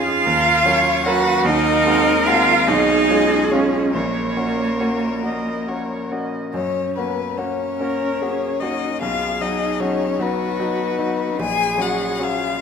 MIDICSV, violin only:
0, 0, Header, 1, 2, 480
1, 0, Start_track
1, 0, Key_signature, 6, "major"
1, 0, Tempo, 809717
1, 865, Time_signature, 6, 3, 24, 8
1, 1838, Tempo, 863309
1, 3758, Tempo, 828729
1, 4718, Tempo, 795756
1, 6638, Tempo, 824176
1, 7348, End_track
2, 0, Start_track
2, 0, Title_t, "Violin"
2, 0, Program_c, 0, 40
2, 0, Note_on_c, 0, 77, 109
2, 621, Note_on_c, 0, 78, 104
2, 630, Note_off_c, 0, 77, 0
2, 857, Note_off_c, 0, 78, 0
2, 861, Note_on_c, 0, 75, 116
2, 1340, Note_on_c, 0, 77, 109
2, 1349, Note_off_c, 0, 75, 0
2, 1588, Note_on_c, 0, 75, 105
2, 1596, Note_off_c, 0, 77, 0
2, 2066, Note_on_c, 0, 73, 86
2, 2074, Note_off_c, 0, 75, 0
2, 2298, Note_off_c, 0, 73, 0
2, 2302, Note_on_c, 0, 70, 75
2, 3492, Note_off_c, 0, 70, 0
2, 3749, Note_on_c, 0, 73, 80
2, 3977, Note_off_c, 0, 73, 0
2, 3994, Note_on_c, 0, 71, 73
2, 4229, Note_on_c, 0, 73, 76
2, 4237, Note_off_c, 0, 71, 0
2, 4953, Note_on_c, 0, 75, 76
2, 4962, Note_off_c, 0, 73, 0
2, 5197, Note_off_c, 0, 75, 0
2, 5200, Note_on_c, 0, 77, 85
2, 5442, Note_on_c, 0, 75, 82
2, 5451, Note_off_c, 0, 77, 0
2, 5676, Note_on_c, 0, 73, 86
2, 5685, Note_off_c, 0, 75, 0
2, 5922, Note_on_c, 0, 71, 86
2, 5931, Note_off_c, 0, 73, 0
2, 6641, Note_off_c, 0, 71, 0
2, 6649, Note_on_c, 0, 80, 105
2, 6881, Note_on_c, 0, 78, 85
2, 6889, Note_off_c, 0, 80, 0
2, 7125, Note_on_c, 0, 77, 86
2, 7134, Note_off_c, 0, 78, 0
2, 7348, Note_off_c, 0, 77, 0
2, 7348, End_track
0, 0, End_of_file